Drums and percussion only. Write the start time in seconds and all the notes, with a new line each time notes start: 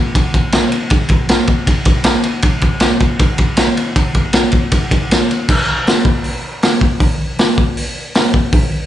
0.15 kick, ride
0.34 kick, ride
0.52 snare, ride
0.72 ride
0.90 kick, ride
1.08 kick, ride
1.29 snare, ride
1.47 kick, ride
1.67 kick, ride
1.85 kick, ride
2.04 snare, ride
2.23 ride
2.42 kick, ride
2.61 kick, ride
2.80 snare, ride
3.00 kick, ride
3.19 kick, ride
3.38 kick, ride
3.57 snare, ride
3.77 ride
3.96 kick, ride
4.14 kick, ride
4.33 snare, ride
4.52 kick, ride
4.71 kick, ride
4.91 kick, ride
5.11 snare, ride
5.31 ride
5.49 kick, crash
5.87 snare, open hi-hat
6.05 kick
6.24 open hi-hat
6.62 snare, open hi-hat
6.81 kick
7.00 kick, open hi-hat
7.38 snare, open hi-hat
7.58 kick
7.77 open hi-hat
8.15 snare, open hi-hat
8.34 kick
8.53 kick, open hi-hat